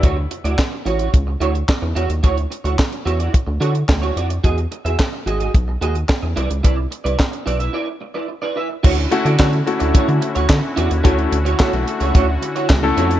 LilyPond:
<<
  \new Staff \with { instrumentName = "Clean electric guitar" } { \time 4/4 \key d \major \tempo 4 = 109 <e' fis' cis''>16 r8 <e' fis' d''>16 r8 <e' fis' cis''>16 <e' fis' cis''>16 r8 <e' fis' cis''>16 r8. <e' fis' cis''>16 r16 | <e' fis' cis''>16 r8 <e' fis' cis''>16 r8 <e' fis' cis''>16 <e' fis' d''>16 r8 <e' fis' cis''>16 r8 <e' fis' cis''>16 <e' fis' d''>16 r16 | <fis' gis' dis''>16 r8 <fis' gis' e''>16 r8 <fis' gis' dis''>16 <fis' gis' dis''>16 r8 <fis' gis' dis''>16 r8. <e' b' d''>16 r16 | <e' b' d''>16 r8 <e' b' d''>16 r8 <e' b' d''>16 <e' b' e''>16 <e' b' d''>16 r8 <e' b' d''>16 r16 <e' b' d''>16 <e' b' e''>16 r16 |
<e' fis' cis''>16 r8 <e' fis' d''>16 <e' fis' cis''>16 r8 <e' fis' d''>16 <e' fis' cis''>16 r8 <e' fis' cis''>16 r8 <e' fis' d''>16 r16 | <e' fis' cis''>16 r8 <e' fis' cis''>16 <e' fis' cis''>16 r8 <e' fis' cis''>16 <e' fis' cis''>16 r8 <e' fis' cis''>16 r8 <e' fis' cis''>16 r16 | }
  \new Staff \with { instrumentName = "Analog synth pad" } { \time 4/4 \key d \major r1 | r1 | r1 | r1 |
<d cis' e' fis'>1~ | <d cis' e' fis'>1 | }
  \new Staff \with { instrumentName = "Grand piano" } { \time 4/4 \key d \major r1 | r1 | r1 | r1 |
r8 <a cis' e' fis'>16 r16 <a cis' e' fis'>16 r16 <a cis' e' fis'>4~ <a cis' e' fis'>16 r4 r16 | <a cis' e' fis'>8 r8 <a cis' e' fis'>4~ <a cis' e' fis'>16 r4 <a cis' e' a'>8. | }
  \new Staff \with { instrumentName = "Analog synth bass" } { \clef bass \time 4/4 \key d \major d,8 r16 d,16 r8 a,,8 cis,8 d,8 r16 e,16 e,16 ees,16 | d,8 r16 d,16 r8 e,8 r16 d,16 d8 d,8 f,8 | e,8 r16 e,16 r8 gis,,8 b,,8 dis,8 r16 e,16 c,16 cis,16 | c,8 r16 c,16 r8 b,,8 r2 |
d,8 r16 d16 d8 r16 d,16 d16 d16 r16 d,16 d16 r16 e,16 ees,16 | d,8 d,8 r16 b,,16 r16 cis,16 d,8 r8 cis,8 f,8 | }
  \new DrumStaff \with { instrumentName = "Drums" } \drummode { \time 4/4 <hh bd>8 hh16 hh16 <hc bd sn>8 hh16 hh16 <hh bd>8 hh16 hh16 <hc bd sn>8 hh16 hh16 | <hh bd>16 hh16 hh16 hh16 <hc bd sn>16 hh16 hh16 hh16 <hh bd>8 hh16 hh16 <hc bd sn>16 hh16 hh16 hh16 | <hh bd>16 hh16 hh16 hh16 <hc bd sn>8 hh16 hh16 <hh bd>8 hh16 hh16 <hc bd sn>8 hh16 hh16 | <hh bd>8 hh16 hh16 <hc bd sn>16 hh16 hh16 hh16 r4 r4 |
<cymc bd>8 hh16 hh16 <hc bd sn>16 hh16 hh16 hh16 <hh bd>16 hh16 hh16 hh16 <hc bd sn>8 hh16 hh16 | <hh bd>16 hh16 hh16 hh16 <hc bd sn>16 hh16 hh16 hh16 <hh bd>8 hh16 hh16 <hc bd sn>8 hh16 hh16 | }
>>